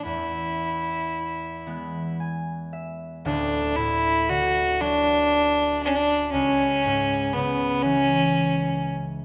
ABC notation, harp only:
X:1
M:6/8
L:1/8
Q:3/8=39
K:Dlyd
V:1 name="Harp"
z4 g e | z6 | z6 |]
V:2 name="Harp" clef=bass
E,,3 [E,G,B,]3 | [D,,,D,,] A,, D, F,3 | C,, G,, C, E,3 |]